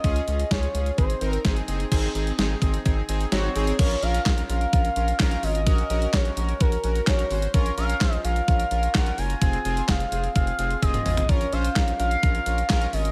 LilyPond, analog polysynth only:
\new Staff \with { instrumentName = "Analog polysynth" } { \time 4/4 \key bes \minor \tempo 4 = 128 <des' f' aes'>8 <des' f' aes'>8 <des' f' aes'>8 <des' f' aes'>8 <c' ees' aes'>8 <c' ees' bes'>8 <c' ees' aes'>8 <c' ees' aes'>8 | <c' ees' aes'>8 <c' ees' aes'>8 <c' ees' aes'>8 <c' ees' aes'>8 <c' ees' aes'>8 <c' ees' aes'>8 <c' ees' ges'>8 <c' ees' aes'>8 | <des' f' bes'>8 <des' f' bes'>8 <des' f' bes'>8 <des' f' bes'>8 <des' f' bes'>8 <des' f' bes'>8 <des' f' bes'>8 <des' f' bes'>8 | <des' ges' bes'>8 <des' ges' bes'>8 <des' ges' bes'>8 <des' ges' bes'>8 <des' ges' bes'>8 <des' ges' bes'>8 <des' ges' bes'>8 <des' ges' c''>8 |
<des' f' bes'>8 <des' f' bes'>8 <des' f' c''>8 <des' f' bes'>8 <des' f' bes'>8 <des' f' bes'>8 <des' f' bes'>8 <des' f' bes'>8 | <c' f' aes'>8 <c' f' aes'>8 <c' f' aes'>8 <c' f' aes'>8 <c' f' aes'>8 <c' f' aes'>8 <c' f' aes'>8 <c' f' aes'>8 | <des' f' bes'>8 <des' f' c''>8 <des' f' bes'>8 <des' f' bes'>8 <des' f' bes'>8 <des' f' bes'>8 <des' f' bes'>8 <des' f' bes'>8 | }